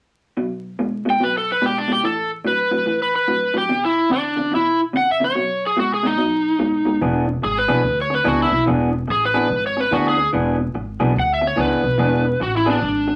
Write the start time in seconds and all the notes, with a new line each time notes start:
0.37 B2 F#3
0.79 B2 G#3
1.05 B2 G#3
1.10 G5
1.20 B2 F#3 B4
1.38 A4
1.52 B4
1.62 B2 G#3 G4
1.78 D4
1.88 B2 G#3
1.93 G4
2.04 A2 E3 A4
2.45 A2 F#3 B4
2.71 A2 F#3
2.86 A2 E3
3.02 B4
3.16 B4
3.28 A2 F#3
3.54 A2 F#3 G4
3.69 E2 B2
3.85 E4
4.10 E2 C#3 D4
4.36 E2 C#3
4.52 E2 B2 E4
4.93 E2 C#3 F#5
5.11 E5
5.20 E2 C#3 C#5
5.35 B2 F#3
5.67 G#4
5.77 B2 G#3 F#4
5.94 G#4
6.03 B2 G#3 D#4
6.18 B2 F#3
6.59 B2 G#3
6.85 B2 G#3
7.01 E1 E3 B3 D4 G#4
7.27 muted clean electric guitar stroke
7.42 G#1 G#4, muted clean electric guitar stroke
7.58 B4
7.68 B1 E3 B3 D4 G#4
7.83 D2, muted clean electric guitar stroke
8.01 C#5
8.10 muted clean electric guitar stroke
8.15 B4
8.24 C#2 E3 B3 D4 F#4 G#4
8.43 E4
8.51 B1, muted clean electric guitar stroke
8.66 E1 E3 B3 D4 G#4
8.93 muted clean electric guitar stroke
9.07 A1 G#4, muted clean electric guitar stroke
9.25 B4
9.34 E3 B3 D4 G#4
9.50 G#1, muted clean electric guitar stroke
9.67 C#5
9.77 B4, muted clean electric guitar stroke
9.91 D2 E3 B3 D4 F#4 G#4
10.09 G#4
10.18 muted clean electric guitar stroke
10.33 E1 E3 B3 D4 G#4
10.59 muted clean electric guitar stroke
10.74 G#1, muted clean electric guitar stroke
11.00 B1 E3 B3 D4 G#4
11.15 D2, muted clean electric guitar stroke
11.19 F#5
11.34 E5
11.41 muted clean electric guitar stroke
11.47 C#5
11.56 C#2 E3 B3 D4 G#4
11.61 B4
11.83 B1, muted clean electric guitar stroke
11.98 E1 E3 B3 D4 G#4
12.25 muted clean electric guitar stroke
12.40 A1 F#4, muted clean electric guitar stroke
12.57 E4
12.66 E3 B3 D4 G#4
12.70 D4
12.82 G#1, muted clean electric guitar stroke
13.08 muted clean electric guitar stroke